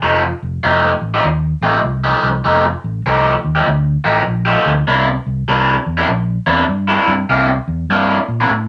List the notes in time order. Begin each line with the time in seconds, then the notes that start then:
0.02 F1 F3 A3 D#4 G4
0.23 muted overdriven electric guitar stroke
0.43 F1
0.63 F1 F3 A3 D#4 G4
1.02 A1
1.14 F3 A3 D#4 G4
1.24 D#2, muted overdriven electric guitar stroke
1.61 A1 F3 A3 D#4 G4
1.84 C2
2.04 F3 A3 D#4 G4
2.23 C2
2.45 F1 F3 A3 D#4 G4
2.65 muted overdriven electric guitar stroke
2.84 A1
3.06 C2 F3 A3 D#4 G4
3.44 D#2
3.55 F3 A3 D#4 G4
3.67 D2, muted overdriven electric guitar stroke
4.04 A1 F3 A3 D#4 G4
4.27 A#1
4.45 F3 A3 D#4 G4
4.66 D2
4.87 C2 C3 A#3 D4 E4
5.08 muted overdriven electric guitar stroke
5.26 C2
5.48 C2 C3 A#3 D4 E4
5.86 E2
5.97 C3 A#3 D4 E4
6.08 A#1, muted overdriven electric guitar stroke
6.47 E2 C3 A#3 D4 E4
6.69 G2
6.88 C3 A#3 D4 E4
7.08 G2
7.29 C2 C3 A#3 D4 E4
7.49 muted overdriven electric guitar stroke
7.68 E2
7.89 G2 C3 A#3 D4 E4
8.28 A#2
8.40 C3 A#3 D4 E4
8.50 A2, muted overdriven electric guitar stroke